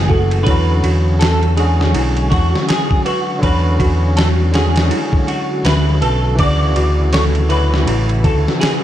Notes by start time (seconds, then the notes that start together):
Already playing: F#1 E3 A3 E4 G#4 F#5 G#5
0.08 F#4 A4, kick
0.31 ride
0.43 E2 D3 F#3 E4 B4, kick, ride
0.48 D3 F#3 C#4 F#4
0.84 E2 F#4, ride
1.19 A4 G#5, snare, ride
1.43 ride
1.57 D3 G#3 C#4 F#4 G#4, ride
1.81 snare
1.95 B1 E4, ride
2.17 ride
2.30 E2 F#4, kick, ride
2.55 snare
2.68 G#4, snare, ride
2.91 kick
3.05 F#4 B4, ride
3.39 E2 D3 F#3 B4, kick
3.43 C#4 F#4, ride
3.80 E2 F#4, kick, ride
4.17 A4 G#5, snare, ride
4.52 D3 G#3 C#4 F#4 G#4, snare, ride
4.76 snare, ride
4.90 E4, ride
5.13 kick
5.27 F#4, ride
5.65 D2 B4 E5, snare, ride
6.01 B1 A4 B4, ride
6.35 D2 C#3 E3 D5, kick, ride
6.39 F#3 E4 F#4
6.75 D2 F#4, ride
7.13 A4 C#5, snare, ride
7.35 ride
7.49 E3 C#4 F#4 B4, ride
7.74 snare
7.87 A1 E4, ride
8.09 ride
8.24 D2 A4, kick, ride
8.48 snare
8.60 G#4, snare, ride